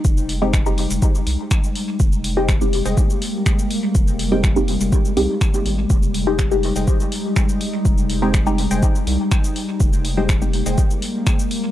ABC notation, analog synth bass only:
X:1
M:4/4
L:1/16
Q:1/4=123
K:Fm
V:1 name="Analog synth bass" clef=bass
F,,,6- F,,, F,,, z2 C,, z4 z | F,,,6- F,,, F,,, z8 | F,,,6- F,,, F,,, z2 C,, z3 A,,,2 | F,,,6- F,,, F,,, z8 |
F,,,6- F,,, F,,, z2 C,, z4 z | F,,,6- F,,, F,,, z8 |]